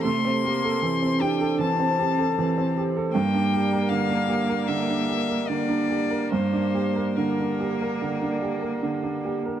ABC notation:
X:1
M:4/4
L:1/16
Q:1/4=76
K:Gdor
V:1 name="Violin"
c'6 g2 a6 z2 | g4 f4 e4 d4 | c4 B8 z4 |]
V:2 name="Analog synth pad"
[GAc]16 | [B,Gd]16 | [B,Gd]16 |]
V:3 name="Grand piano"
[C,A] C G A E, C G A E, C G A E, C G A | G,, D G B D, D G B D, D G B D, D G B | G,, D G B D, D G B D, D G B D, D G B |]
V:4 name="Cello"
A,2 B,2 C2 D2 C2 C2 C4 | B,12 B,4- | B,4 B,8- B,3 z |]